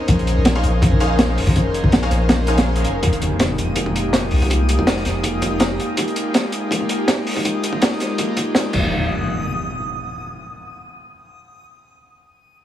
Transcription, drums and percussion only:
0.08 kick loud
0.08 closed hi-hat medium
0.19 closed hi-hat soft
0.27 closed hi-hat medium
0.45 snare loud
0.45 closed hi-hat medium
0.63 closed hi-hat medium
0.82 kick loud
0.82 closed hi-hat medium
0.92 kick medium
1.00 closed hi-hat medium
1.19 snare loud
1.19 closed hi-hat medium
1.38 open hi-hat medium
1.47 kick loud
1.56 kick loud
1.56 closed hi-hat medium
1.74 closed hi-hat medium
1.84 kick medium
1.92 snare loud
1.92 closed hi-hat medium
2.02 snare soft
2.10 snare soft
2.10 closed hi-hat medium
2.29 snare loud
2.29 closed hi-hat medium
2.47 closed hi-hat medium
2.58 snare medium
2.58 closed hi-hat medium
2.76 closed hi-hat medium
2.84 closed hi-hat medium
3.03 kick loud
3.03 closed hi-hat medium
3.13 closed hi-hat soft
3.22 closed hi-hat medium
3.39 snare loud
3.39 closed hi-hat medium
3.58 closed hi-hat medium
3.76 kick loud
3.76 closed hi-hat medium
3.86 kick loud
3.96 closed hi-hat medium
4.13 snare loud
4.13 closed hi-hat medium
4.31 open hi-hat medium
4.42 kick loud
4.50 kick loud
4.50 closed hi-hat medium
4.69 closed hi-hat medium
4.79 kick medium
4.87 snare loud
4.87 closed hi-hat medium
4.97 snare soft
5.05 snare soft
5.05 closed hi-hat medium
5.24 kick loud
5.24 closed hi-hat medium
5.42 kick loud
5.42 closed hi-hat medium
5.60 snare loud
5.60 closed hi-hat medium
5.80 closed hi-hat medium
5.97 kick loud
5.97 closed hi-hat loud
6.08 closed hi-hat soft
6.16 closed hi-hat medium
6.34 snare loud
6.34 closed hi-hat medium
6.52 closed hi-hat medium
6.71 kick loud
6.71 closed hi-hat medium
6.80 kick loud
6.89 closed hi-hat medium
7.08 snare loud
7.08 closed hi-hat medium
7.27 open hi-hat medium
7.37 kick loud
7.45 kick loud
7.45 closed hi-hat medium
7.63 closed hi-hat medium
7.73 kick loud
7.82 snare loud
7.82 closed hi-hat medium
7.91 snare soft
8.00 snare soft
8.00 closed hi-hat medium
8.18 kick loud
8.18 closed hi-hat medium
8.37 kick medium
8.37 closed hi-hat medium
8.55 snare loud
8.55 closed hi-hat medium
8.73 kick loud
8.73 crash medium

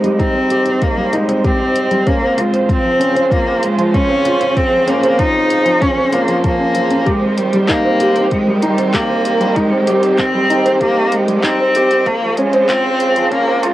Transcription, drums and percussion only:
0.04 closed hi-hat soft
0.19 kick loud
0.19 closed hi-hat soft
0.50 closed hi-hat medium
0.65 closed hi-hat soft
0.81 kick loud
0.81 closed hi-hat soft
1.13 closed hi-hat medium
1.29 closed hi-hat soft
1.44 kick loud
1.44 closed hi-hat soft
1.75 closed hi-hat medium
1.91 closed hi-hat soft
2.07 kick loud
2.07 closed hi-hat soft
2.38 closed hi-hat medium
2.54 closed hi-hat soft
2.69 kick medium
2.69 closed hi-hat soft
3.01 closed hi-hat medium
3.17 closed hi-hat soft
3.32 kick loud
3.32 closed hi-hat soft
3.63 closed hi-hat medium
3.79 closed hi-hat soft
3.94 kick loud
3.94 closed hi-hat soft
4.25 closed hi-hat medium
4.41 closed hi-hat soft
4.57 kick loud
4.57 closed hi-hat soft
4.88 closed hi-hat medium
5.03 closed hi-hat soft
5.19 kick loud
5.19 closed hi-hat soft
5.50 closed hi-hat medium
5.66 closed hi-hat soft
5.82 kick medium
5.82 closed hi-hat soft
6.12 closed hi-hat medium
6.28 closed hi-hat soft
6.44 kick loud
6.44 closed hi-hat soft
6.75 closed hi-hat medium
6.91 closed hi-hat soft
7.06 kick loud
7.06 closed hi-hat soft
7.38 closed hi-hat medium
7.53 closed hi-hat soft
7.69 kick loud
7.69 clap medium
7.69 closed hi-hat soft
8.00 closed hi-hat medium
8.16 closed hi-hat soft
8.31 kick loud
8.31 closed hi-hat soft
8.62 closed hi-hat medium
8.78 closed hi-hat soft
8.94 kick loud
8.94 clap medium
8.94 closed hi-hat soft
9.25 closed hi-hat medium
9.41 closed hi-hat soft
9.56 kick loud
9.56 closed hi-hat soft
9.87 closed hi-hat medium
10.03 closed hi-hat soft
10.18 kick loud
10.18 clap medium
10.18 closed hi-hat soft
10.50 closed hi-hat medium
10.66 closed hi-hat soft
10.81 kick loud
10.81 closed hi-hat soft
11.12 closed hi-hat medium
11.28 closed hi-hat soft
11.44 kick loud
11.44 clap medium
11.44 closed hi-hat soft
11.75 closed hi-hat medium
11.91 closed hi-hat soft
12.06 kick medium
12.06 closed hi-hat soft
12.37 closed hi-hat medium
12.53 closed hi-hat soft
12.69 kick loud
12.69 clap medium
12.69 closed hi-hat soft
13.00 closed hi-hat medium
13.16 closed hi-hat soft
13.31 kick loud
13.31 closed hi-hat soft
13.63 closed hi-hat medium

